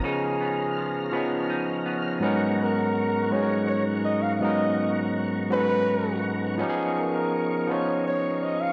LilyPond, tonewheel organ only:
\new Staff \with { instrumentName = "Tonewheel organ" } { \time 6/8 \key gis \dorian \tempo 4. = 55 << { <cis'' eis'' eis'''>2. | <gis b fis'' cis'''>2.~ | <gis b fis'' cis'''>2. | <b dis'' cis'''>2. | } \\ { ais''2. | ais''2. | ais''2. | eis''2. | } >> }